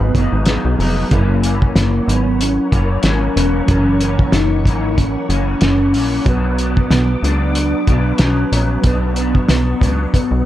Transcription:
Already playing: clean electric guitar G#2 F#3 B3 D#4, reed electric piano F#3 B3 G#4, soft synth lead B3, string machine G#4 D#5 F5 B5
0.00 analog synth bass G#1
0.14 analog synth bass F#1, clean electric guitar G#2 F#3 B3 D#4, kick, closed hi-hat
0.33 analog synth bass G#1
0.46 clean electric guitar G#2 F#3 B3 D#4, reed electric piano F#3 B3 D#4 G#4, soft synth lead B3, snare, closed hi-hat
0.65 analog synth bass B1
0.78 analog synth bass F1, clean electric guitar G#2 F#3 B3, open hi-hat
0.82 clean electric guitar D#4
1.09 analog synth bass F#1, clean electric guitar F#2 E3 A#3 C#4, reed electric piano F#3 C#4 E4, soft synth lead A#3, string machine A#4 C#5 F#5 C#6, kick, closed hi-hat
1.15 reed electric piano A#4
1.42 clean electric guitar F#2 E3 A#3 C#4, closed hi-hat
1.62 kick
1.75 analog synth bass F#1, soft synth lead A#3, snare, closed hi-hat
2.06 analog synth bass G#1, clean electric guitar F#2 E3 C#4, soft synth lead B3, closed hi-hat
2.41 soft synth lead C#4, closed hi-hat
2.71 analog synth bass F#1, clean electric guitar F#2 E3 A#3 C#4, kick, closed hi-hat
3.03 analog synth bass G#1, clean electric guitar F#2 E3 A#3, snare, closed hi-hat
3.08 clean electric guitar C#4
3.35 analog synth bass E1, clean electric guitar F#2 E3 A#3 C#4, soft synth lead C#4, closed hi-hat
3.66 analog synth bass F#1, clean electric guitar F#2 E3 A#3 C#4, reed electric piano E3 F#3 C#4, kick, closed hi-hat
3.71 reed electric piano A#4
3.98 clean electric guitar F#2 E3 A#3 C#4, closed hi-hat
4.19 kick
4.32 analog synth bass F#1, soft synth lead D#4, snare, closed hi-hat
4.64 analog synth bass G#1, clean electric guitar F#2 E3 A#3, kick, closed hi-hat
4.68 clean electric guitar C#4
4.98 soft synth lead C#4, kick, closed hi-hat
5.29 analog synth bass F#1, clean electric guitar F#2 E3 A#3 C#4, closed hi-hat
5.61 analog synth bass F#1, clean electric guitar F#2 E3 A#3 C#4, soft synth lead C#4, snare, closed hi-hat
5.94 analog synth bass A#1, clean electric guitar F#2 E3 A#3, open hi-hat
5.98 clean electric guitar C#4
6.25 analog synth bass B1, clean electric guitar B2 F#3 B3, reed electric piano F#3 B3 F#4, soft synth lead B3, string machine B4 D6, kick, closed hi-hat
6.29 clean electric guitar D4, reed electric piano B4
6.58 clean electric guitar B2 F#3 B3 D4, closed hi-hat
6.77 kick
6.90 analog synth bass B1, soft synth lead B3, snare, closed hi-hat
7.22 analog synth bass C#2, clean electric guitar B2 F#3 B3 D4, soft synth lead D4, closed hi-hat
7.55 closed hi-hat
7.87 analog synth bass B1, clean electric guitar B2 F#3 B3, kick, closed hi-hat
7.91 clean electric guitar D4
8.18 analog synth bass B1, clean electric guitar B2 F#3 B3, soft synth lead C#4, snare, closed hi-hat
8.52 analog synth bass A#1, clean electric guitar F#3 B3, closed hi-hat
8.82 analog synth bass B1, clean electric guitar B2 F#3, reed electric piano F#3 B3 D4, soft synth lead B3, string machine C#6, kick, closed hi-hat
8.86 clean electric guitar B3 D4, reed electric piano B4
9.16 clean electric guitar B2 F#3 B3 D4, closed hi-hat
9.35 kick
9.48 analog synth bass B1, soft synth lead B3, snare, closed hi-hat
9.80 analog synth bass C#2, clean electric guitar B2 F#3 B3 D4, kick, closed hi-hat
10.14 soft synth lead B3, kick, closed hi-hat
10.31 analog synth bass B1

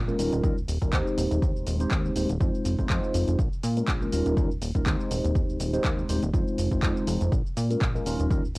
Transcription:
Already playing: analog synth bass A#1
0.08 tine electric piano G#3 A#3 C#4 F4 A#4, cabasa
0.19 analog synth bass D#1, tine electric piano G3 C#4 D#4 F4 A#4, open hi-hat, cabasa
0.33 analog synth bass D#1, closed hi-hat, cabasa
0.43 analog synth bass D#2, tine electric piano G3 C#4 D#4 F4 A#4, kick, closed hi-hat, cabasa
0.57 analog synth bass D#1, cabasa
0.68 analog synth bass D#1, open hi-hat, cabasa
0.81 analog synth bass D#1, tine electric piano G3 C#4 D#4 F4 A#4, kick, closed hi-hat, cabasa
0.92 analog synth bass D#2, tine electric piano G#3 C4 D#4 G4 C5, kick, clap, closed hi-hat, cabasa
1.07 cabasa
1.17 analog synth bass D#1, open hi-hat, cabasa
1.31 analog synth bass D#1, closed hi-hat, cabasa
1.42 analog synth bass D#2, kick, closed hi-hat, cabasa
1.56 analog synth bass D#1, cabasa
1.67 analog synth bass D#1, open hi-hat, cabasa
1.80 tine electric piano G#3 C4 D#4 G4 C5, closed hi-hat, cabasa
1.91 analog synth bass D#2, kick, clap, closed hi-hat, cabasa
2.05 cabasa
2.16 analog synth bass D#1, tine electric piano G#3 C4 D#4 G4 C5, open hi-hat, cabasa
2.29 analog synth bass D#1, closed hi-hat, cabasa
2.40 analog synth bass F2, tine electric piano G#3 C4 D#4 F4 C5, kick, closed hi-hat, cabasa
2.54 cabasa
2.65 analog synth bass F1, open hi-hat, cabasa
2.78 analog synth bass F1, tine electric piano G#3 C4 D#4 F4 C5, kick, closed hi-hat, cabasa
2.89 analog synth bass F2, tine electric piano G#3 C4 D#4 F4 C5, kick, clap, closed hi-hat, cabasa
3.04 cabasa
3.14 analog synth bass F1, open hi-hat, cabasa
3.28 analog synth bass F1, closed hi-hat, cabasa
3.39 kick, closed hi-hat, cabasa
3.53 cabasa
3.63 analog synth bass A#2, open hi-hat, cabasa
3.77 tine electric piano G#3 A#3 C#4 F4 A#4, closed hi-hat, cabasa
3.88 analog synth bass A#1, kick, clap, closed hi-hat, cabasa
4.01 tine electric piano G#3 A#3 C#4 F4 A#4, cabasa
4.12 analog synth bass D#1, tine electric piano G3 C#4 D#4 F4 A#4, open hi-hat, cabasa
4.26 analog synth bass D#1, closed hi-hat, cabasa
4.37 analog synth bass D#2, tine electric piano G3 C#4 D#4 F4 A#4, kick, closed hi-hat, cabasa
4.51 analog synth bass D#1, cabasa
4.62 analog synth bass D#1, open hi-hat, cabasa
4.75 analog synth bass D#1, tine electric piano G3 C#4 D#4 F4 A#4, kick, closed hi-hat, cabasa
4.85 analog synth bass D#2, tine electric piano G#3 C4 D#4 G4 C5, kick, clap, closed hi-hat, cabasa
5.00 cabasa
5.11 analog synth bass D#1, open hi-hat, cabasa
5.24 analog synth bass D#1, closed hi-hat, cabasa
5.35 analog synth bass D#2, kick, closed hi-hat, cabasa
5.49 analog synth bass D#1, cabasa
5.60 analog synth bass D#1, open hi-hat, cabasa
5.73 tine electric piano G#3 C4 D#4 G4 C5, closed hi-hat, cabasa
5.84 analog synth bass D#2, kick, clap, closed hi-hat, cabasa
5.99 cabasa
6.09 analog synth bass D#1, tine electric piano G#3 C4 D#4 G4 C5, open hi-hat, cabasa
6.23 analog synth bass D#1, closed hi-hat, cabasa
6.33 analog synth bass F2, tine electric piano G#3 C4 D#4 F4 C5, kick, closed hi-hat, cabasa
6.48 cabasa
6.58 analog synth bass F1, open hi-hat, cabasa
6.71 analog synth bass F1, tine electric piano G#3 C4 D#4 F4 C5, kick, closed hi-hat, cabasa
6.82 analog synth bass F2, tine electric piano G#3 C4 D#4 F4 C5, kick, clap, closed hi-hat, cabasa
6.97 cabasa
7.07 analog synth bass F1, open hi-hat, cabasa
7.21 analog synth bass F1, closed hi-hat, cabasa
7.32 analog synth bass A#1, kick, closed hi-hat, cabasa
7.46 cabasa
7.57 analog synth bass A#2, open hi-hat, cabasa
7.70 tine electric piano G#3 A#3 C#4 F4 A#4, closed hi-hat, cabasa
7.81 analog synth bass A#1, kick, clap, closed hi-hat, cabasa
7.94 tine electric piano G#3 A#3 C#4 F4 A#4, cabasa
8.06 analog synth bass D#1, tine electric piano G3 C#4 D#4 F4 A#4, open hi-hat, cabasa
8.19 analog synth bass D#1, closed hi-hat, cabasa
8.30 analog synth bass D#2, tine electric piano G3 C#4 D#4 F4 A#4, kick, closed hi-hat, cabasa
8.44 analog synth bass D#1, cabasa
8.55 analog synth bass D#1, open hi-hat

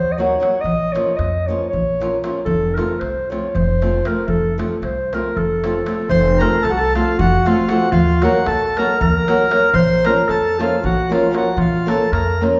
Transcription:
Already playing: upright bass D#2, clarinet C5
0.12 clarinet D#5
0.18 nylon-string guitar F#3 A#3 D#4 F#4, clarinet C#5, darbuka tek
0.32 darbuka tek
0.40 nylon-string guitar F#3 A#3 D#4 F#4, darbuka tek
0.61 upright bass A#1, clarinet D#5
0.65 darbuka dum
0.80 darbuka tek
0.92 nylon-string guitar F3 A#3 C#4, clarinet C#5, darbuka tek
0.96 nylon-string guitar F4
1.16 upright bass F2, clarinet D#5, darbuka tek
1.34 darbuka tek
1.46 nylon-string guitar F3 A#3 C#4 F4, clarinet C#5
1.63 darbuka tek
1.69 upright bass A#1, clarinet C#5
1.74 darbuka dum
2.00 nylon-string guitar F3 A#3 C#4 F4, darbuka tek
2.14 darbuka tek
2.23 nylon-string guitar F3 A#3 C#4 F4, darbuka tek
2.45 upright bass F1, clarinet A4, darbuka dum
2.63 darbuka tek
2.75 nylon-string guitar F3 A3 C4 F4, clarinet A#4, darbuka tek
3.00 upright bass C2, clarinet C5, darbuka tek
3.16 darbuka tek
3.30 nylon-string guitar F3 A3 C4 F4, clarinet C#5, darbuka tek
3.44 darbuka tek
3.55 upright bass F1, clarinet C5, darbuka dum
3.82 nylon-string guitar F3 A3 C4 F4, darbuka tek
3.94 darbuka tek
4.05 nylon-string guitar F3 A3 C4 F4, clarinet A#4, darbuka tek
4.28 upright bass F1, clarinet A4, darbuka dum
4.44 darbuka tek
4.58 nylon-string guitar F3 A3 C4 F4, darbuka tek
4.82 upright bass C2, clarinet C5, darbuka tek
4.97 darbuka tek
5.13 nylon-string guitar F3 A3 C4 F4, clarinet A#4, darbuka tek
5.36 upright bass F1, clarinet A4, darbuka dum
5.50 darbuka tek
5.64 nylon-string guitar F3 A3 C4 F4, darbuka tek
5.76 darbuka tek
5.86 nylon-string guitar F3 A3 C4 F4, darbuka tek
6.09 upright bass F1, clarinet C5, accordion C6, darbuka dum
6.26 darbuka tek
6.38 nylon-string guitar F3 A3 C4 F4 A4, clarinet A#4, accordion A#5, darbuka tek
6.62 upright bass C2, clarinet A4, accordion A5, darbuka tek
6.70 clarinet F#4, accordion F#5
6.77 clarinet A4, accordion A5, darbuka tek
6.94 nylon-string guitar F3 A3 C4 F4 A4, clarinet F4, accordion F5, darbuka tek
7.19 upright bass F1, clarinet F#4, accordion F#5, darbuka dum
7.45 nylon-string guitar F3 A3 C4 F4 A4, clarinet F4, accordion F5, darbuka tek
7.68 nylon-string guitar F3 A3 C4 F4 A4, clarinet F#4, accordion F#5, darbuka tek
7.91 upright bass D#2, clarinet F4, accordion F5, darbuka dum
8.22 nylon-string guitar F#3 A#3 D#4 F#4 A#4, clarinet F#4, accordion F#5, darbuka tek
8.46 upright bass A#1, clarinet A4, accordion A5, darbuka tek
8.61 darbuka tek
8.77 nylon-string guitar F#3 A#3 D#4 F#4 A#4, clarinet A#4, accordion A#5, darbuka tek
9.00 upright bass D#2, clarinet A#4, accordion A#5, darbuka dum
9.15 darbuka tek
9.27 nylon-string guitar F#3 A#3 D#4 F#4 A#4, darbuka tek
9.50 nylon-string guitar F#3 A#3 D#4 F#4 A#4, darbuka tek
9.74 upright bass A#1, clarinet C5, accordion C6, darbuka dum
9.89 darbuka tek
10.04 nylon-string guitar F3 A#3 C#4 F4 A#4, clarinet A#4, accordion A#5, darbuka tek
10.29 upright bass F2, clarinet A4, accordion A5, darbuka tek
10.45 darbuka tek
10.59 nylon-string guitar F3 A#3 C#4 F4 A#4, clarinet F4, accordion F5, darbuka tek
10.84 upright bass A#1, clarinet F#4, accordion F#5, darbuka dum
10.98 darbuka tek
11.09 nylon-string guitar F3 A#3 C#4 F4 A#4, clarinet F4, darbuka tek
11.13 accordion F5
11.31 nylon-string guitar F3 A#3 C#4 F4 A#4, clarinet F#4, darbuka tek
11.37 accordion F#5
11.57 upright bass A#1, clarinet F4, accordion F5, darbuka dum
11.73 darbuka tek
11.86 nylon-string guitar F3 A#3 C#4 F4 A#4, clarinet A4, accordion A5, darbuka tek
12.01 darbuka tek
12.12 upright bass F2, clarinet A#4, accordion A#5, darbuka tek
12.41 nylon-string guitar F3 A#3 C#4 F4 A#4, darbuka tek

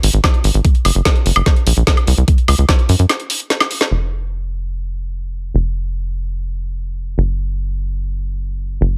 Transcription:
0.03 analog synth bass G#1, open hi-hat
0.14 analog synth bass G#1, closed hi-hat
0.24 kick, snare, closed hi-hat, high woodblock
0.34 closed hi-hat
0.44 analog synth bass G#1, open hi-hat
0.54 analog synth bass G#1, closed hi-hat
0.65 kick, closed hi-hat
0.75 closed hi-hat
0.85 analog synth bass F#1, open hi-hat, high woodblock
0.95 analog synth bass F#1, closed hi-hat
1.05 kick, snare, closed hi-hat
1.16 closed hi-hat
1.26 analog synth bass F#1, open hi-hat
1.36 analog synth bass F#1, high woodblock
1.46 kick, snare, closed hi-hat
1.56 closed hi-hat
1.67 analog synth bass A#1, open hi-hat
1.77 analog synth bass A#1, closed hi-hat
1.87 kick, snare, closed hi-hat
1.97 closed hi-hat, high woodblock
2.07 analog synth bass C2, open hi-hat
2.18 analog synth bass C2, closed hi-hat
2.28 kick, closed hi-hat
2.38 closed hi-hat
2.48 analog synth bass C#2, open hi-hat, high woodblock
2.58 analog synth bass C#2, closed hi-hat
2.69 kick, snare, closed hi-hat
2.79 closed hi-hat
2.89 analog synth bass F#2, open hi-hat
2.99 analog synth bass F#2, closed hi-hat
3.09 snare, closed hi-hat, high woodblock
3.20 closed hi-hat
3.30 open hi-hat
3.40 closed hi-hat
3.50 snare, closed hi-hat
3.60 snare, closed hi-hat, high woodblock
3.71 open hi-hat
3.81 snare, closed hi-hat
3.91 analog synth bass F1
5.54 analog synth bass F1
7.18 analog synth bass F#1
8.81 analog synth bass F#1

